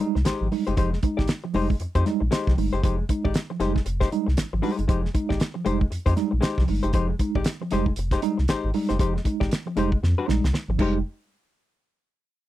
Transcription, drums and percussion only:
0.00 closed hi-hat medium
0.16 snare soft
0.25 snare loud
0.25 closed hi-hat loud
0.52 open hi-hat medium
0.67 closed hi-hat medium
0.77 kick loud
0.77 closed hi-hat medium
0.93 snare soft
1.03 kick loud
1.03 closed hi-hat medium
1.19 kick medium
1.19 snare soft
1.28 snare loud
1.28 closed hi-hat loud
1.54 open hi-hat medium
1.70 kick medium
1.80 closed hi-hat medium
1.95 kick medium
1.95 closed hi-hat soft
2.06 snare soft
2.06 closed hi-hat medium
2.32 snare loud
2.32 closed hi-hat loud
2.47 kick loud
2.47 snare soft
2.58 open hi-hat medium
2.73 closed hi-hat medium
2.84 kick loud
2.84 closed hi-hat medium
3.09 kick medium
3.09 closed hi-hat medium
3.25 kick loud
3.34 snare loud
3.34 closed hi-hat loud
3.60 snare soft
3.60 closed hi-hat medium
3.76 kick medium
3.76 snare soft
3.86 closed hi-hat loud
4.01 kick medium
4.01 snare soft
4.01 closed hi-hat medium
4.12 closed hi-hat medium
4.28 snare soft
4.37 snare loud
4.37 closed hi-hat loud
4.63 open hi-hat medium
4.79 closed hi-hat medium
4.89 kick loud
4.89 closed hi-hat medium
5.05 snare soft
5.15 kick loud
5.15 closed hi-hat medium
5.30 kick medium
5.30 snare soft
5.40 snare loud
5.40 closed hi-hat loud
5.66 closed hi-hat medium
5.81 kick medium
5.92 closed hi-hat medium
6.06 kick loud
6.06 closed hi-hat medium
6.17 snare soft
6.17 closed hi-hat medium
6.42 snare loud
6.42 closed hi-hat medium
6.58 kick loud
6.58 snare soft
6.68 open hi-hat medium
6.83 closed hi-hat medium
6.93 kick loud
6.93 closed hi-hat medium
7.19 kick medium
7.19 closed hi-hat medium
7.35 kick loud
7.44 snare loud
7.44 closed hi-hat loud
7.71 snare soft
7.71 closed hi-hat medium
7.86 kick medium
7.96 closed hi-hat medium
8.11 kick medium
8.11 snare soft
8.11 closed hi-hat soft
8.22 closed hi-hat medium
8.38 snare soft
8.48 snare loud
8.48 closed hi-hat loud
8.74 open hi-hat medium
8.89 snare soft
8.89 closed hi-hat medium
8.99 kick loud
8.99 closed hi-hat medium
9.17 snare soft
9.25 kick medium
9.25 closed hi-hat medium
9.41 kick loud
9.41 snare soft
9.51 snare loud
9.51 closed hi-hat loud
9.77 closed hi-hat medium
9.92 kick medium
10.04 snare medium
10.29 snare medium
10.44 snare medium
10.54 snare medium
10.79 kick medium
10.79 crash medium

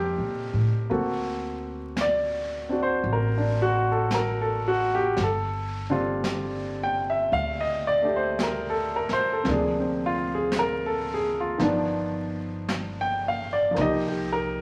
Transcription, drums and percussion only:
0.89 brush sweep soft
1.97 brush sweep soft
1.97 snare soft
1.97 hi-hat pedal soft
3.04 brush sweep soft
4.11 brush sweep soft
4.11 snare soft
4.11 hi-hat pedal soft
5.17 brush sweep soft
5.17 snare soft
6.24 brush sweep soft
6.24 snare soft
6.24 hi-hat pedal medium
7.32 brush sweep soft
8.39 brush sweep soft
8.39 snare soft
8.39 hi-hat pedal soft
9.09 snare soft
9.45 brush sweep soft
9.45 snare soft
10.52 brush sweep soft
10.52 snare soft
10.52 hi-hat pedal medium
11.60 brush sweep soft
11.60 snare soft
12.69 brush sweep soft
12.69 snare soft
12.69 hi-hat pedal soft
13.76 brush sweep soft
13.76 snare soft

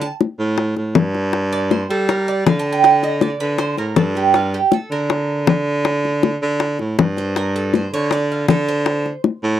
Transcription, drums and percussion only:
0.02 high bongo soft
0.21 high bongo medium
0.58 high bongo medium
0.77 high bongo soft
0.95 high bongo medium
0.95 low bongo loud
1.15 high bongo soft
1.33 high bongo medium
1.71 high bongo medium
2.09 high bongo medium
2.46 high bongo medium
2.46 low bongo medium
2.84 high bongo medium
3.03 high bongo soft
3.21 high bongo medium
3.58 high bongo medium
3.77 high bongo soft
3.96 high bongo medium
3.96 low bongo medium
4.15 high bongo soft
4.34 high bongo medium
4.72 high bongo medium
5.10 high bongo medium
5.47 high bongo medium
5.47 low bongo medium
5.85 high bongo medium
6.05 high bongo soft
6.23 high bongo medium
6.60 high bongo medium
6.79 high bongo soft
6.99 high bongo medium
6.99 low bongo medium
7.17 high bongo soft
7.36 high bongo medium
7.74 high bongo medium
8.11 high bongo medium
8.48 high bongo medium
8.48 low bongo medium
8.86 high bongo medium
9.06 high bongo soft
9.24 high bongo medium

